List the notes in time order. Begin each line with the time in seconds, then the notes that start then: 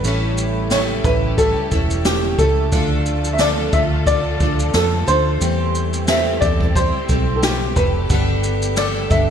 Already playing: G3 A3 B4
0.04 A1 A2 C#3 G3 C#4 E4 G4 A4, shaker
0.38 shaker
0.71 A2 G3 C#4 E4 A4 C#5, snare, shaker
1.04 A1 C#4 E4 A4 B4, kick, shaker
1.37 G3 C#4 E4 A4, kick, shaker
1.71 E1 C#4 E4 A4, kick, shaker
1.91 shaker
2.05 G4, snare, shaker
2.38 C#2 C#4 E4 A4, kick, shaker
2.72 D2 D3 F3 D4 F4 A4, kick, shaker
3.06 shaker
3.24 shaker
3.33 E5
3.39 D3 D4 F4 A4 D5, snare, shaker
3.72 D2 D4 F4 A4 E5, kick, shaker
4.06 D3 D4 F4 A4 D5, kick, shaker
4.40 D2 D4 F4 A4, kick, shaker
4.60 shaker
4.74 F2 A4, snare, shaker
5.07 D2 D4 F4 A4 C5, shaker
5.41 E2 E3 G3 C4 E4 G4 A4, shaker
5.75 shaker
5.93 shaker
6.07 E2 E3 G3 C4 G4 A4 E5, snare, shaker
6.41 E2 G3 C4 G4 A4 D5, kick, shaker
6.61 kick
6.75 G3 C4 G4 A4 C5, kick, shaker
7.09 B1 G3 C4 G4 A4, kick, shaker
7.36 A4
7.43 G4, snare, shaker
7.76 F1 G3 C4 G4 A4 B4, kick, shaker
8.09 G1 D3 G3 B3 D4 A4, kick, shaker
8.43 shaker
8.62 shaker
8.76 G3 B3 D4 A4 D5, snare, shaker
9.10 G1 B3 D4 A4 E5, kick, shaker